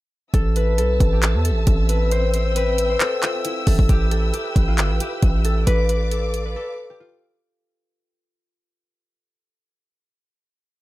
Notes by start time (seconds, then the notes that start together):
0.34 A1 C4 A4 E5 A5 E6, kick, closed hi-hat
0.56 B4, closed hi-hat
0.78 B1 A4, closed hi-hat
1.00 A1, kick, closed hi-hat
1.13 G4
1.23 clap, closed hi-hat
1.34 E2
1.45 A4, closed hi-hat
1.51 A1
1.67 A1, kick, closed hi-hat
1.89 B4, closed hi-hat
2.11 C5 G5, closed hi-hat
2.34 C5, closed hi-hat
2.56 B4, closed hi-hat
2.78 closed hi-hat
2.90 C5
3.00 A4, clap, closed hi-hat
3.23 F4, clap, closed hi-hat
3.45 E4, closed hi-hat
3.67 A1 A4, kick, open hi-hat
3.79 A1, kick
3.89 A1 G4 B4 G5, kick, closed hi-hat
4.11 A4, closed hi-hat
4.34 G4, closed hi-hat
4.56 A1, kick, closed hi-hat
4.68 F4
4.78 G1, clap, closed hi-hat
4.90 A1
5.00 G4, closed hi-hat
5.22 A1, kick, closed hi-hat
5.45 A4, closed hi-hat
5.67 A1 A4 B4 D5 F5 D6, closed hi-hat
5.89 B4, closed hi-hat
6.11 A4, closed hi-hat
6.34 closed hi-hat
6.45 B4
6.56 A4
6.90 G4
7.00 F4